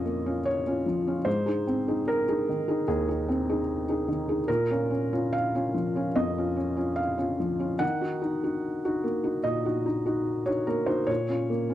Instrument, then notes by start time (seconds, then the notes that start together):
felt piano
Already playing: F2 F3 A#3 C#4 F4 C#5 D#5
0.05 A#3
0.26 C#4 F4
0.46 C#5
0.67 C#4 F4
0.86 F3
1.07 C#4 F4
1.25 G#2 C5
1.46 D#4 G#4
1.67 C4
1.88 D#4 G#4
2.08 A#4
2.28 D#4 G#4
2.49 D#3
2.68 D#4 G#4
2.88 D#2 G#4
3.08 D#4 G#4
3.29 C4
3.49 D#4 G#4
3.89 D#4 G#4
4.08 D#3
4.29 D#4 G#4
4.48 A#2 A#4
4.71 C#4 F4
4.90 C#4
5.13 C#4 F4
5.33 F5
5.55 C#4 F4
5.74 F3
5.96 C#4 F4
6.16 F2 D#5
6.38 C#4 F4
6.57 C#4
6.77 C#4 F4
6.96 F5
7.18 C#4 F4
7.40 F3
7.59 C#4 F4
7.79 D#3 F#5
8.01 D#4 F#4
8.22 D#4
8.44 D#4 F#4
8.85 D#4 F#4
9.04 A#3
9.24 D#4 F#4
9.44 A#2 D#5
9.65 D#4 F#4
9.86 D#4
10.06 D#4 F#4
10.46 D#4 F#4 C#5
10.67 A#3 A#4
10.86 D#4 F#4 C5
11.07 A#2 C#5
11.29 C#4 F4
11.50 A#3
11.69 C#4 F4